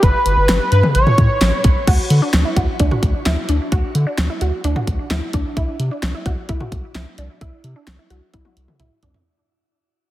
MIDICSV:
0, 0, Header, 1, 5, 480
1, 0, Start_track
1, 0, Tempo, 461538
1, 29, Time_signature, 4, 2, 24, 8
1, 10509, End_track
2, 0, Start_track
2, 0, Title_t, "Analog synth lead"
2, 0, Program_c, 0, 81
2, 27, Note_on_c, 0, 71, 107
2, 742, Note_off_c, 0, 71, 0
2, 748, Note_on_c, 0, 71, 90
2, 856, Note_off_c, 0, 71, 0
2, 987, Note_on_c, 0, 73, 89
2, 1666, Note_off_c, 0, 73, 0
2, 10509, End_track
3, 0, Start_track
3, 0, Title_t, "Synth arpeggio sound"
3, 0, Program_c, 1, 84
3, 1951, Note_on_c, 1, 66, 93
3, 2151, Note_off_c, 1, 66, 0
3, 2310, Note_on_c, 1, 62, 77
3, 2511, Note_off_c, 1, 62, 0
3, 2550, Note_on_c, 1, 64, 74
3, 2650, Note_off_c, 1, 64, 0
3, 2671, Note_on_c, 1, 66, 78
3, 2871, Note_off_c, 1, 66, 0
3, 2911, Note_on_c, 1, 62, 86
3, 3011, Note_off_c, 1, 62, 0
3, 3031, Note_on_c, 1, 66, 74
3, 3231, Note_off_c, 1, 66, 0
3, 3389, Note_on_c, 1, 64, 85
3, 3590, Note_off_c, 1, 64, 0
3, 3631, Note_on_c, 1, 62, 78
3, 3831, Note_off_c, 1, 62, 0
3, 3871, Note_on_c, 1, 66, 92
3, 4071, Note_off_c, 1, 66, 0
3, 4230, Note_on_c, 1, 62, 76
3, 4430, Note_off_c, 1, 62, 0
3, 4471, Note_on_c, 1, 64, 74
3, 4570, Note_off_c, 1, 64, 0
3, 4591, Note_on_c, 1, 66, 79
3, 4791, Note_off_c, 1, 66, 0
3, 4831, Note_on_c, 1, 62, 87
3, 4931, Note_off_c, 1, 62, 0
3, 4953, Note_on_c, 1, 66, 74
3, 5152, Note_off_c, 1, 66, 0
3, 5313, Note_on_c, 1, 64, 86
3, 5512, Note_off_c, 1, 64, 0
3, 5552, Note_on_c, 1, 62, 78
3, 5752, Note_off_c, 1, 62, 0
3, 5791, Note_on_c, 1, 64, 93
3, 5991, Note_off_c, 1, 64, 0
3, 6150, Note_on_c, 1, 62, 76
3, 6351, Note_off_c, 1, 62, 0
3, 6391, Note_on_c, 1, 64, 77
3, 6491, Note_off_c, 1, 64, 0
3, 6512, Note_on_c, 1, 66, 78
3, 6711, Note_off_c, 1, 66, 0
3, 6750, Note_on_c, 1, 64, 86
3, 6850, Note_off_c, 1, 64, 0
3, 6872, Note_on_c, 1, 66, 70
3, 7072, Note_off_c, 1, 66, 0
3, 7231, Note_on_c, 1, 64, 84
3, 7431, Note_off_c, 1, 64, 0
3, 7472, Note_on_c, 1, 62, 76
3, 7672, Note_off_c, 1, 62, 0
3, 7711, Note_on_c, 1, 64, 88
3, 7911, Note_off_c, 1, 64, 0
3, 8070, Note_on_c, 1, 62, 74
3, 8271, Note_off_c, 1, 62, 0
3, 8310, Note_on_c, 1, 64, 74
3, 8410, Note_off_c, 1, 64, 0
3, 8428, Note_on_c, 1, 66, 76
3, 8629, Note_off_c, 1, 66, 0
3, 8668, Note_on_c, 1, 64, 85
3, 8769, Note_off_c, 1, 64, 0
3, 8788, Note_on_c, 1, 66, 71
3, 8989, Note_off_c, 1, 66, 0
3, 9150, Note_on_c, 1, 64, 84
3, 9350, Note_off_c, 1, 64, 0
3, 9390, Note_on_c, 1, 62, 77
3, 9590, Note_off_c, 1, 62, 0
3, 10509, End_track
4, 0, Start_track
4, 0, Title_t, "Analog synth bass"
4, 0, Program_c, 2, 38
4, 30, Note_on_c, 2, 31, 105
4, 139, Note_off_c, 2, 31, 0
4, 268, Note_on_c, 2, 31, 94
4, 378, Note_off_c, 2, 31, 0
4, 388, Note_on_c, 2, 31, 100
4, 498, Note_off_c, 2, 31, 0
4, 508, Note_on_c, 2, 31, 98
4, 618, Note_off_c, 2, 31, 0
4, 749, Note_on_c, 2, 43, 104
4, 859, Note_off_c, 2, 43, 0
4, 988, Note_on_c, 2, 33, 104
4, 1098, Note_off_c, 2, 33, 0
4, 1228, Note_on_c, 2, 45, 104
4, 1338, Note_off_c, 2, 45, 0
4, 1468, Note_on_c, 2, 33, 91
4, 1578, Note_off_c, 2, 33, 0
4, 1711, Note_on_c, 2, 35, 88
4, 1819, Note_off_c, 2, 35, 0
4, 1950, Note_on_c, 2, 38, 109
4, 2059, Note_off_c, 2, 38, 0
4, 2188, Note_on_c, 2, 50, 93
4, 2298, Note_off_c, 2, 50, 0
4, 2428, Note_on_c, 2, 38, 101
4, 2538, Note_off_c, 2, 38, 0
4, 2668, Note_on_c, 2, 38, 98
4, 2778, Note_off_c, 2, 38, 0
4, 2910, Note_on_c, 2, 38, 108
4, 3019, Note_off_c, 2, 38, 0
4, 3147, Note_on_c, 2, 38, 99
4, 3258, Note_off_c, 2, 38, 0
4, 3389, Note_on_c, 2, 38, 102
4, 3498, Note_off_c, 2, 38, 0
4, 3628, Note_on_c, 2, 38, 99
4, 3738, Note_off_c, 2, 38, 0
4, 3870, Note_on_c, 2, 38, 108
4, 3979, Note_off_c, 2, 38, 0
4, 4109, Note_on_c, 2, 50, 104
4, 4218, Note_off_c, 2, 50, 0
4, 4348, Note_on_c, 2, 38, 101
4, 4458, Note_off_c, 2, 38, 0
4, 4589, Note_on_c, 2, 38, 98
4, 4698, Note_off_c, 2, 38, 0
4, 4828, Note_on_c, 2, 38, 106
4, 4938, Note_off_c, 2, 38, 0
4, 5068, Note_on_c, 2, 38, 101
4, 5178, Note_off_c, 2, 38, 0
4, 5307, Note_on_c, 2, 38, 95
4, 5418, Note_off_c, 2, 38, 0
4, 5551, Note_on_c, 2, 38, 104
4, 5660, Note_off_c, 2, 38, 0
4, 5790, Note_on_c, 2, 36, 99
4, 5899, Note_off_c, 2, 36, 0
4, 6026, Note_on_c, 2, 48, 97
4, 6137, Note_off_c, 2, 48, 0
4, 6268, Note_on_c, 2, 36, 102
4, 6378, Note_off_c, 2, 36, 0
4, 6509, Note_on_c, 2, 36, 104
4, 6618, Note_off_c, 2, 36, 0
4, 6751, Note_on_c, 2, 36, 108
4, 6860, Note_off_c, 2, 36, 0
4, 6989, Note_on_c, 2, 36, 99
4, 7098, Note_off_c, 2, 36, 0
4, 7227, Note_on_c, 2, 36, 106
4, 7337, Note_off_c, 2, 36, 0
4, 7468, Note_on_c, 2, 36, 98
4, 7578, Note_off_c, 2, 36, 0
4, 7709, Note_on_c, 2, 36, 101
4, 7819, Note_off_c, 2, 36, 0
4, 7946, Note_on_c, 2, 48, 98
4, 8057, Note_off_c, 2, 48, 0
4, 8188, Note_on_c, 2, 36, 103
4, 8298, Note_off_c, 2, 36, 0
4, 8427, Note_on_c, 2, 36, 100
4, 8538, Note_off_c, 2, 36, 0
4, 8671, Note_on_c, 2, 36, 105
4, 8780, Note_off_c, 2, 36, 0
4, 8909, Note_on_c, 2, 36, 97
4, 9019, Note_off_c, 2, 36, 0
4, 9147, Note_on_c, 2, 36, 106
4, 9258, Note_off_c, 2, 36, 0
4, 9388, Note_on_c, 2, 36, 99
4, 9498, Note_off_c, 2, 36, 0
4, 10509, End_track
5, 0, Start_track
5, 0, Title_t, "Drums"
5, 29, Note_on_c, 9, 36, 110
5, 29, Note_on_c, 9, 42, 82
5, 133, Note_off_c, 9, 36, 0
5, 133, Note_off_c, 9, 42, 0
5, 268, Note_on_c, 9, 42, 75
5, 372, Note_off_c, 9, 42, 0
5, 506, Note_on_c, 9, 42, 69
5, 508, Note_on_c, 9, 38, 108
5, 610, Note_off_c, 9, 42, 0
5, 612, Note_off_c, 9, 38, 0
5, 747, Note_on_c, 9, 42, 62
5, 851, Note_off_c, 9, 42, 0
5, 867, Note_on_c, 9, 47, 93
5, 971, Note_off_c, 9, 47, 0
5, 987, Note_on_c, 9, 42, 74
5, 1091, Note_off_c, 9, 42, 0
5, 1110, Note_on_c, 9, 45, 94
5, 1214, Note_off_c, 9, 45, 0
5, 1228, Note_on_c, 9, 36, 94
5, 1230, Note_on_c, 9, 42, 78
5, 1232, Note_on_c, 9, 45, 97
5, 1332, Note_off_c, 9, 36, 0
5, 1334, Note_off_c, 9, 42, 0
5, 1336, Note_off_c, 9, 45, 0
5, 1468, Note_on_c, 9, 42, 74
5, 1470, Note_on_c, 9, 38, 104
5, 1572, Note_off_c, 9, 42, 0
5, 1574, Note_off_c, 9, 38, 0
5, 1707, Note_on_c, 9, 42, 79
5, 1711, Note_on_c, 9, 36, 94
5, 1811, Note_off_c, 9, 42, 0
5, 1815, Note_off_c, 9, 36, 0
5, 1949, Note_on_c, 9, 36, 108
5, 1950, Note_on_c, 9, 42, 80
5, 1950, Note_on_c, 9, 49, 88
5, 2053, Note_off_c, 9, 36, 0
5, 2054, Note_off_c, 9, 42, 0
5, 2054, Note_off_c, 9, 49, 0
5, 2188, Note_on_c, 9, 42, 77
5, 2292, Note_off_c, 9, 42, 0
5, 2426, Note_on_c, 9, 42, 68
5, 2428, Note_on_c, 9, 38, 105
5, 2530, Note_off_c, 9, 42, 0
5, 2532, Note_off_c, 9, 38, 0
5, 2667, Note_on_c, 9, 36, 87
5, 2668, Note_on_c, 9, 42, 57
5, 2771, Note_off_c, 9, 36, 0
5, 2772, Note_off_c, 9, 42, 0
5, 2907, Note_on_c, 9, 42, 75
5, 2910, Note_on_c, 9, 36, 88
5, 3011, Note_off_c, 9, 42, 0
5, 3014, Note_off_c, 9, 36, 0
5, 3031, Note_on_c, 9, 45, 94
5, 3135, Note_off_c, 9, 45, 0
5, 3148, Note_on_c, 9, 36, 92
5, 3149, Note_on_c, 9, 42, 78
5, 3252, Note_off_c, 9, 36, 0
5, 3253, Note_off_c, 9, 42, 0
5, 3388, Note_on_c, 9, 42, 73
5, 3390, Note_on_c, 9, 38, 104
5, 3492, Note_off_c, 9, 42, 0
5, 3494, Note_off_c, 9, 38, 0
5, 3626, Note_on_c, 9, 42, 80
5, 3730, Note_off_c, 9, 42, 0
5, 3868, Note_on_c, 9, 42, 83
5, 3869, Note_on_c, 9, 36, 112
5, 3972, Note_off_c, 9, 42, 0
5, 3973, Note_off_c, 9, 36, 0
5, 4108, Note_on_c, 9, 42, 73
5, 4212, Note_off_c, 9, 42, 0
5, 4347, Note_on_c, 9, 42, 66
5, 4348, Note_on_c, 9, 38, 102
5, 4451, Note_off_c, 9, 42, 0
5, 4452, Note_off_c, 9, 38, 0
5, 4588, Note_on_c, 9, 42, 60
5, 4692, Note_off_c, 9, 42, 0
5, 4828, Note_on_c, 9, 42, 75
5, 4932, Note_off_c, 9, 42, 0
5, 4950, Note_on_c, 9, 45, 93
5, 5054, Note_off_c, 9, 45, 0
5, 5069, Note_on_c, 9, 36, 90
5, 5070, Note_on_c, 9, 42, 76
5, 5173, Note_off_c, 9, 36, 0
5, 5174, Note_off_c, 9, 42, 0
5, 5308, Note_on_c, 9, 42, 75
5, 5310, Note_on_c, 9, 38, 106
5, 5412, Note_off_c, 9, 42, 0
5, 5414, Note_off_c, 9, 38, 0
5, 5547, Note_on_c, 9, 42, 78
5, 5551, Note_on_c, 9, 36, 89
5, 5651, Note_off_c, 9, 42, 0
5, 5655, Note_off_c, 9, 36, 0
5, 5790, Note_on_c, 9, 36, 106
5, 5790, Note_on_c, 9, 42, 80
5, 5894, Note_off_c, 9, 36, 0
5, 5894, Note_off_c, 9, 42, 0
5, 6028, Note_on_c, 9, 42, 72
5, 6132, Note_off_c, 9, 42, 0
5, 6267, Note_on_c, 9, 42, 65
5, 6269, Note_on_c, 9, 38, 100
5, 6371, Note_off_c, 9, 42, 0
5, 6373, Note_off_c, 9, 38, 0
5, 6507, Note_on_c, 9, 42, 58
5, 6508, Note_on_c, 9, 36, 84
5, 6611, Note_off_c, 9, 42, 0
5, 6612, Note_off_c, 9, 36, 0
5, 6748, Note_on_c, 9, 42, 71
5, 6751, Note_on_c, 9, 36, 88
5, 6852, Note_off_c, 9, 42, 0
5, 6855, Note_off_c, 9, 36, 0
5, 6869, Note_on_c, 9, 45, 89
5, 6973, Note_off_c, 9, 45, 0
5, 6988, Note_on_c, 9, 36, 88
5, 6990, Note_on_c, 9, 42, 78
5, 7092, Note_off_c, 9, 36, 0
5, 7094, Note_off_c, 9, 42, 0
5, 7227, Note_on_c, 9, 42, 74
5, 7229, Note_on_c, 9, 38, 100
5, 7331, Note_off_c, 9, 42, 0
5, 7333, Note_off_c, 9, 38, 0
5, 7467, Note_on_c, 9, 42, 76
5, 7571, Note_off_c, 9, 42, 0
5, 7709, Note_on_c, 9, 36, 101
5, 7709, Note_on_c, 9, 42, 78
5, 7813, Note_off_c, 9, 36, 0
5, 7813, Note_off_c, 9, 42, 0
5, 7946, Note_on_c, 9, 42, 73
5, 8050, Note_off_c, 9, 42, 0
5, 8187, Note_on_c, 9, 42, 65
5, 8188, Note_on_c, 9, 38, 99
5, 8291, Note_off_c, 9, 42, 0
5, 8292, Note_off_c, 9, 38, 0
5, 8428, Note_on_c, 9, 42, 58
5, 8532, Note_off_c, 9, 42, 0
5, 8669, Note_on_c, 9, 42, 73
5, 8671, Note_on_c, 9, 36, 88
5, 8671, Note_on_c, 9, 48, 53
5, 8773, Note_off_c, 9, 42, 0
5, 8775, Note_off_c, 9, 36, 0
5, 8775, Note_off_c, 9, 48, 0
5, 8791, Note_on_c, 9, 48, 49
5, 8895, Note_off_c, 9, 48, 0
5, 8911, Note_on_c, 9, 42, 76
5, 9015, Note_off_c, 9, 42, 0
5, 9030, Note_on_c, 9, 47, 61
5, 9134, Note_off_c, 9, 47, 0
5, 9148, Note_on_c, 9, 42, 75
5, 9149, Note_on_c, 9, 45, 74
5, 9252, Note_off_c, 9, 42, 0
5, 9253, Note_off_c, 9, 45, 0
5, 9387, Note_on_c, 9, 42, 74
5, 9389, Note_on_c, 9, 43, 92
5, 9491, Note_off_c, 9, 42, 0
5, 9493, Note_off_c, 9, 43, 0
5, 9509, Note_on_c, 9, 43, 80
5, 9613, Note_off_c, 9, 43, 0
5, 10509, End_track
0, 0, End_of_file